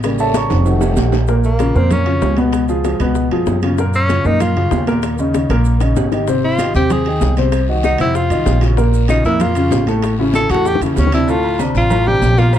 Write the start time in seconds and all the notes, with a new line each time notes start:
Already playing: A1
0.03 C#3 G3 A#3, high bongo, high timbale, long guiro, maracas
0.19 A4 C#5 E5 A5, high bongo, high conga, maracas
0.34 C#5 A5 A#5 C#6, high bongo, high conga, high timbale, low timbale, short guiro, maracas
0.50 F1, high bongo, high conga, high timbale, short guiro, maracas
0.66 D#3 F#3 A3, high conga, high timbale, long guiro, maracas
0.81 low bongo, high conga, low timbale, maracas
0.96 A#1, high conga, low timbale, short guiro, maracas
1.12 low bongo, low timbale, short guiro, maracas
1.28 A#2 A#3 A#4, high bongo, high conga, maracas
1.44 A#3, high bongo, high conga, maracas
1.59 C#3 C#4 F4, high bongo, high conga, high timbale, low timbale, maracas
1.75 F2 A#2 A#3 C4 A#4, high bongo, maracas
1.91 C#4, high bongo, high conga, low conga, high timbale, maracas
2.06 C#3 C#4 F4, high conga, high timbale
2.22 C#2, high bongo, low bongo, high conga, low timbale, maracas
2.37 B2 B3 B4, high bongo, high conga, high timbale, maracas
2.53 high bongo, high timbale, maracas
2.69 F3 F4 G#4, high bongo, high conga, maracas
2.84 F3 F4 G#4, high bongo, high conga, high timbale, low timbale, maracas
3.00 C#2 B2 B3 B4, high bongo, high conga, high timbale, maracas
3.15 high bongo, high conga, maracas
3.31 F2 F3 F4 G#4, high conga, high timbale
3.46 F#2, high bongo, low bongo, high conga, low timbale, maracas
3.62 C#3 C#4 F4, high bongo, high conga, high timbale, maracas
3.78 A#2 A#3 A#4, high bongo, high conga, maracas
3.94 C#4, high bongo, high conga, maracas
4.09 C#3 C#4 F4, high bongo, high conga, high timbale, low timbale, maracas
4.25 F#2 A#2 A#3 D#4 A#4, high bongo, maracas
4.40 F4, high bongo, high conga, low conga, high timbale, maracas
4.56 C#3 C#4 F4, high conga, low conga, high timbale
4.71 D#2, high bongo, low bongo, high conga, low timbale, maracas
4.87 A#2 A#3 A#4, high bongo, high conga, high timbale, maracas
5.03 high bongo, high conga, high timbale, maracas
5.18 C#3 C#4 D#4, high bongo, high conga, maracas
5.34 C#3 C#4 D#4, high bongo, high conga, high timbale, low timbale, maracas
5.49 A#1 A#2 A#3 A#4, high bongo, high conga, high timbale, maracas
5.65 high conga, maracas
5.80 C#3 C#4 D#4, low bongo, high conga, high timbale, maracas
5.96 G#1, low bongo, high conga, low timbale, maracas
6.12 D#3 D#4 G4, low bongo, high conga, high timbale, maracas
6.28 C3 C4 C5, high bongo, high conga, long guiro, maracas
6.43 F4, high bongo, high conga
6.59 D#3 D#4 G4, high bongo, high conga, high timbale, low timbale, short guiro, maracas
6.74 D#2 C3 C4 G4 C5, short guiro, maracas
6.90 G#4, high bongo, high conga, low conga, high timbale, long guiro, maracas
7.06 D#3 D#4 G5, high conga, high timbale
7.21 C2, high bongo, low bongo, high conga, low timbale, short guiro, maracas
7.37 C3 C4 C5, high bongo, high conga, high timbale, short guiro, maracas
7.52 high bongo, high conga, high timbale, long guiro, maracas
7.68 D#3 D#4 F#4, high bongo, high conga
7.83 D#3 D#4 F#4, high bongo, high conga, high timbale, low timbale, short guiro, maracas
7.98 F2 C3 C4 E4 C5, high bongo, high conga, high timbale, short guiro, maracas
8.15 F4, high bongo, high conga, long guiro, maracas
8.30 C2 D#3 D#4 F4, high conga, high timbale, maracas
8.46 A#1, high bongo, low bongo, high conga, low timbale, short guiro, maracas
8.61 C#3 C#4 F4, high bongo, high conga, high timbale, short guiro, maracas
8.77 A#2 A#3 A#4, high bongo, high conga, long guiro, maracas
8.93 high bongo, high conga, maracas
9.08 C#3 C#4 D#4 F4, high bongo, high conga, high timbale, low timbale, short guiro, maracas
9.25 F2 A#2 A#3 E4 A#4, high bongo, short guiro, maracas
9.40 F4, high bongo, high conga, low conga, high timbale, long guiro, maracas
9.55 C#3 C#4 F4, high conga, high timbale, maracas
9.71 A1, high bongo, low bongo, high conga, low timbale, short guiro, maracas
9.87 A2 A3 A4, high bongo, high conga, high timbale, short guiro, maracas
10.02 high bongo, high conga, high timbale, long guiro, maracas
10.18 C#3 C#4 E4, high bongo, high conga
10.34 C#3 C#4 E4 A4, high bongo, high conga, high timbale, low timbale, short guiro, maracas
10.50 E2 A2 A3 F#4 A4, high conga, high timbale, short guiro, maracas
10.54 high bongo
10.65 G4, high bongo, high conga, long guiro, maracas
10.75 low bongo
10.81 E2 C#3 A#3 C#4 E4, high conga, high timbale, maracas
10.86 low bongo
10.96 D2 C#4, high conga, low timbale, short guiro, maracas
11.07 low bongo
11.12 C3 C4 D4 E4, high timbale, short guiro, maracas
11.18 low bongo
11.28 A2 A3 F4 A4, cowbell, high conga, low agogo, long guiro, maracas
11.44 high conga, low agogo
11.59 C3 C4 D4, cowbell, high conga, low timbale, low agogo, short guiro, maracas
11.74 A1 F4, cowbell, short guiro, maracas
11.90 A2 A3 A4, cowbell, high conga, low conga, low agogo, maracas
12.06 C3 C4 D4 G4, high conga, low conga, low agogo
12.21 A#1, cowbell, high conga, low timbale, short guiro, maracas
12.37 A#2 A#3 F4 A#4, cowbell, high conga, low agogo, short guiro, maracas
12.53 F4, cowbell, high conga, low agogo, long guiro, maracas